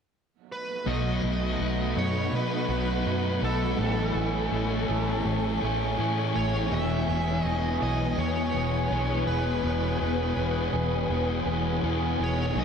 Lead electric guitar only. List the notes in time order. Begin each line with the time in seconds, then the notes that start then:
0.52 B4
0.87 D#5
1.98 C#5
2.35 B4
3.44 A4
6.36 C#5
6.72 E5
7.42 D#5
7.83 D#5
8.19 C#5
9.27 B4
12.23 C#5
12.59 D#5